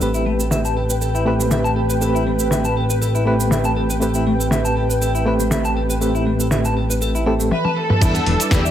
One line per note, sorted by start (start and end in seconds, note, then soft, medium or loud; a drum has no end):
0.01 7.51 A1 medium
0.01 1.23 A3 medium
0.01 1.24 C4 medium
0.01 1.24 G4 medium
0.01 0.12 A4 medium
0.01 7.48 B4 medium
0.01 1.24 B4 medium
0.01 7.48 G5 medium
0.01 cabasa medium
0.14 0.23 E4 medium
0.14 cabasa soft
0.26 0.33 A3 medium
0.40 0.46 A4 medium
0.40 cabasa medium
0.51 0.58 E5 medium
0.51 snare loud
0.51 cabasa medium
0.65 0.74 A5 medium
0.65 cabasa soft
0.77 0.83 A4 medium
0.90 0.93 B4 medium
0.90 cabasa medium
1.01 1.12 A4 medium
1.01 cabasa medium
1.15 1.24 E4 medium
1.15 cabasa soft
1.25 1.98 A3 medium
1.25 1.99 C4 medium
1.25 1.33 E4 medium
1.25 1.99 G4 medium
1.25 1.99 B4 medium
1.40 1.43 A3 medium
1.40 cabasa medium
1.51 1.58 E5 medium
1.51 snare medium
1.51 cabasa medium
1.64 1.70 A5 medium
1.64 cabasa soft
1.76 1.80 A4 medium
1.90 1.93 B4 medium
1.90 cabasa medium
2.00 3.23 A3 medium
2.00 3.23 C4 medium
2.00 3.24 G4 medium
2.00 2.11 A4 medium
2.00 3.24 B4 medium
2.00 cabasa medium
2.15 2.24 E4 medium
2.15 cabasa soft
2.27 2.33 A3 medium
2.39 2.46 A4 medium
2.39 cabasa medium
2.51 2.58 E5 medium
2.51 snare loud
2.51 cabasa medium
2.65 2.74 A5 medium
2.65 cabasa soft
2.77 2.83 A4 medium
2.90 2.93 B4 medium
2.90 cabasa medium
3.02 3.12 A4 loud
3.02 cabasa medium
3.15 3.24 E4 medium
3.15 cabasa soft
3.25 3.98 A3 medium
3.25 3.98 C4 medium
3.25 3.33 E4 medium
3.25 3.99 G4 medium
3.25 3.99 B4 medium
3.40 3.43 A3 medium
3.40 cabasa medium
3.51 3.58 E5 medium
3.51 snare loud
3.51 cabasa medium
3.64 3.71 A5 loud
3.64 cabasa soft
3.76 3.81 A4 medium
3.90 3.93 B4 medium
3.90 cabasa medium
4.00 5.23 A3 medium
4.00 5.24 C4 medium
4.00 5.24 G4 medium
4.00 4.12 A4 medium
4.00 5.24 B4 medium
4.00 cabasa medium
4.14 4.24 E4 medium
4.14 cabasa soft
4.27 4.33 A3 medium
4.40 4.46 A4 medium
4.40 cabasa medium
4.51 4.58 E5 medium
4.51 snare loud
4.51 cabasa soft
4.65 4.74 A5 medium
4.65 cabasa soft
4.77 4.83 A4 medium
4.90 4.93 B4 medium
4.90 cabasa medium
5.02 5.12 A4 medium
5.02 cabasa medium
5.15 5.24 E4 medium
5.15 cabasa soft
5.26 5.98 A3 medium
5.26 5.99 C4 medium
5.26 5.33 E4 medium
5.26 5.99 G4 medium
5.26 5.99 B4 medium
5.40 5.43 A3 medium
5.40 cabasa medium
5.51 5.58 E5 loud
5.51 snare loud
5.51 cabasa medium
5.65 5.71 A5 medium
5.65 cabasa soft
5.77 5.81 A4 medium
5.90 5.93 B4 medium
5.90 cabasa medium
6.01 7.23 A3 medium
6.01 7.24 C4 medium
6.01 7.24 G4 medium
6.01 6.11 A4 medium
6.01 7.24 B4 medium
6.01 cabasa medium
6.15 6.24 E4 medium
6.15 cabasa soft
6.27 6.33 A3 medium
6.40 6.46 A4 medium
6.40 cabasa medium
6.51 6.58 E5 medium
6.51 snare loud
6.51 cabasa medium
6.65 6.74 A5 medium
6.65 cabasa soft
6.77 6.83 A4 medium
6.90 6.93 B4 medium
6.90 cabasa medium
7.02 7.12 A4 loud
7.02 cabasa medium
7.15 7.24 E4 medium
7.15 cabasa soft
7.26 7.51 A3 medium
7.26 7.52 C4 medium
7.26 7.33 E4 medium
7.26 7.52 G4 medium
7.26 7.52 A4 medium
7.40 7.43 A3 medium
7.40 cabasa medium
7.51 7.75 B4 medium
7.51 7.58 E5 loud
7.51 high tom medium
7.65 7.71 A5 loud
7.65 high tom medium
7.76 7.80 A4 medium
7.76 8.51 A4 medium
7.90 7.93 B4 medium
7.90 mid tom medium
8.01 8.20 E2 loud
8.01 8.71 G3 medium
8.01 8.71 D4 medium
8.01 8.12 E4 loud
8.01 8.71 E4 medium
8.01 8.71 B4 medium
8.01 8.71 D5 medium
8.01 8.71 E6 medium
8.01 kick loud
8.01 closed hi-hat medium
8.01 crash loud
8.01 cabasa medium
8.15 8.23 B3 loud
8.15 closed hi-hat soft
8.15 cabasa soft
8.26 8.36 E1 medium
8.26 8.33 E3 loud
8.26 open hi-hat loud
8.40 8.46 E4 medium
8.40 closed hi-hat medium
8.40 cabasa medium
8.51 8.70 E2 medium
8.51 8.71 G4 medium
8.51 8.58 B4 loud
8.51 kick loud
8.51 snare loud
8.51 closed hi-hat medium
8.51 cabasa medium
8.65 8.71 E5 medium
8.65 cabasa soft